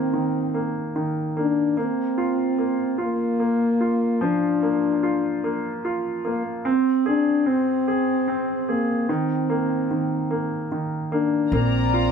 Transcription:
Already playing: D#3 A#3 C4
0.13 D#3
0.54 A#3
0.96 D#3
1.37 A#3 D4
1.77 A#3 C4
2.18 F4
2.58 A#3
2.98 A#3 F4
3.40 A#3
3.81 F4
4.21 F3 D4
4.62 A#3
5.03 F4
5.44 A#3
5.85 F4
6.25 A#3
6.65 C4
7.06 D4 G#4
7.46 C4
7.88 G#4
8.28 C4
8.69 A#3 G#4
9.09 D#3 C4
9.50 A#3
9.91 D#3
10.31 A#3
10.72 D#3
11.12 A#3 D4
11.52 A#1 A#3 C4 F4 D5 A#5
11.94 F4

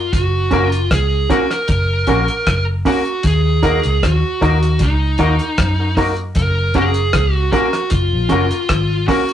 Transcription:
Already playing: F4
0.13 F#1 F#4, kick, closed hi-hat
0.51 F#1 A#3 C#4 F#4 A#4, kick, closed hi-hat
0.68 F4, closed hi-hat
0.91 C#2 G#4, kick, cross-stick, closed hi-hat
1.30 A#3 C#4 F#4 A#4, kick, closed hi-hat
1.51 F#4 A#4, cross-stick, closed hi-hat
1.68 F#1, kick, closed hi-hat
2.07 A#1 A#3 C#4 F#4 A#4, kick, closed hi-hat
2.28 F#4 A#4, closed hi-hat
2.47 F#1, kick, cross-stick, closed hi-hat
2.85 A#3 C#4 F#4 A#4, kick, open hi-hat
3.05 closed hi-hat
3.23 D#2 G#4, kick, closed hi-hat
3.63 A#3 D#4 F#4 A#4, kick, closed hi-hat
3.83 C#2, closed hi-hat
4.03 D#2 F#4, kick, cross-stick, closed hi-hat
4.41 D#2 A#3 D#4 F#4 A#4, kick, closed hi-hat
4.63 F#4 A#4, closed hi-hat
4.79 C#2 D#4, kick, closed hi-hat
5.18 D#2 A#3 D#4 F#4 A#4, kick, closed hi-hat
5.39 F#4 A#4, closed hi-hat
5.58 F#2, kick, cross-stick, closed hi-hat
5.79 F#4 A#4
5.97 A#3 D#4 F#4 A#4, kick, cross-stick, open hi-hat
6.17 closed hi-hat
6.35 F#1 A#4, kick, closed hi-hat
6.74 F#1 A#3 C#4 F#4 G#4 A#4, kick, closed hi-hat
6.94 closed hi-hat
7.13 C#2, kick, cross-stick, closed hi-hat
7.34 F#4
7.52 A#3 C#4 F#4 A#4, kick, closed hi-hat
7.73 F#4 A#4, cross-stick, closed hi-hat
7.90 F#1 F4, kick, closed hi-hat
8.13 A#1
8.29 F#1 A#3 C#4 F#4 A#4, kick, closed hi-hat
8.51 F#4 A#4, closed hi-hat
8.69 G#1, kick, cross-stick, closed hi-hat
9.08 A#3 C#4 F#4 A#4, kick, cross-stick, open hi-hat
9.29 closed hi-hat

